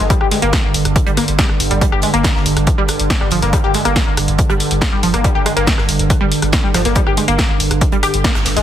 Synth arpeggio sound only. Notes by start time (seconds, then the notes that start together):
0.10 G3
0.21 G4
0.32 G#3
0.42 A#3
1.06 G3
1.17 A#3
1.39 G3
1.71 G3
1.81 G3
1.92 G4
2.03 G#3
2.14 A#3
2.78 G3
3.21 G3
3.32 F3
3.42 A#3
3.53 G3
3.64 G4
3.74 G#3
3.85 A#3
4.49 G3
4.92 G3
5.03 F3
5.14 A#3
5.24 G3
5.35 G4
5.46 G#3
5.56 A#3
6.21 G3
6.64 G3
6.74 F3
6.85 A#3
6.96 G3
7.07 G4
7.17 G#3
7.28 A#3
7.92 G3
8.03 G4
8.24 A#3
8.57 G#3